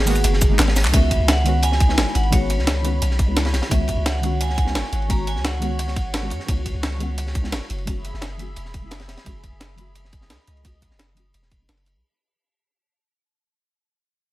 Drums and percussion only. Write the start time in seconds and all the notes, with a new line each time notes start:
0.07 open hi-hat, shaker
0.15 ride, shaker
0.24 closed hi-hat, ride, shaker
0.33 snare
0.42 kick, closed hi-hat, ride, shaker
0.59 snare, clap, closed hi-hat, ride
0.67 snare, ride
0.76 snare, open hi-hat, ride, shaker
0.85 snare, clap
0.94 kick, closed hi-hat, ride
1.11 kick, closed hi-hat, ride
1.28 snare, closed hi-hat, ride
1.37 ride
1.46 closed hi-hat, ride
1.62 closed hi-hat, ride
1.72 snare
1.80 kick, closed hi-hat, ride
1.89 snare
1.97 snare, closed hi-hat, ride
2.07 snare
2.15 closed hi-hat, ride
2.23 ride
2.32 kick, closed hi-hat, ride
2.50 closed hi-hat, ride
2.59 snare
2.67 snare, closed hi-hat, ride
2.85 closed hi-hat, ride
3.02 closed hi-hat, ride
3.11 snare
3.19 kick, closed hi-hat, ride
3.37 snare, closed hi-hat, ride
3.45 snare, ride
3.53 snare, closed hi-hat, ride
3.62 snare, ride
3.71 kick, closed hi-hat, ride
3.88 kick, closed hi-hat, ride
4.06 snare, closed hi-hat, ride
4.15 ride
4.23 closed hi-hat, ride
4.41 closed hi-hat, ride
4.50 snare
4.58 kick, closed hi-hat, ride
4.67 snare
4.75 snare, closed hi-hat, ride
4.84 snare
4.93 closed hi-hat, ride
5.02 ride
5.10 kick, closed hi-hat, ride
5.27 closed hi-hat, ride
5.36 snare
5.45 snare, closed hi-hat, ride
5.62 closed hi-hat, ride
5.79 closed hi-hat, ride
5.88 snare
5.96 kick, closed hi-hat, ride
6.14 snare, closed hi-hat, ride
6.30 closed hi-hat, ride
6.40 snare
6.48 kick, closed hi-hat, ride
6.66 kick, closed hi-hat, ride
6.83 snare, closed hi-hat, ride
6.92 ride
7.00 closed hi-hat, ride
7.18 closed hi-hat, ride
7.27 snare
7.35 kick, closed hi-hat, ride
7.44 snare
7.52 snare, closed hi-hat, ride
7.62 snare
7.70 closed hi-hat, ride
7.78 ride
7.87 kick, closed hi-hat, ride
8.05 closed hi-hat, ride
8.14 snare
8.22 snare, closed hi-hat, ride
8.39 closed hi-hat, ride
8.56 closed hi-hat, ride
8.65 snare
8.74 kick, closed hi-hat, ride
8.91 snare, closed hi-hat, ride
8.99 snare, ride
9.08 snare, closed hi-hat, ride
9.17 snare, ride
9.26 kick, closed hi-hat, ride
9.43 kick, closed hi-hat, ride
9.60 snare, closed hi-hat, ride
9.69 ride
9.77 closed hi-hat, ride
9.95 closed hi-hat, ride
10.05 snare
10.12 kick, closed hi-hat, ride
10.21 snare
10.30 snare, closed hi-hat, ride
10.39 snare
10.47 closed hi-hat, ride
10.57 ride
10.65 kick, closed hi-hat, ride
10.82 kick, closed hi-hat, ride
10.91 snare
10.99 snare, closed hi-hat, ride
11.17 closed hi-hat, ride
11.34 closed hi-hat, ride
11.42 snare
11.51 kick, closed hi-hat, ride
11.69 snare, closed hi-hat, ride
11.77 ride
11.86 closed hi-hat, ride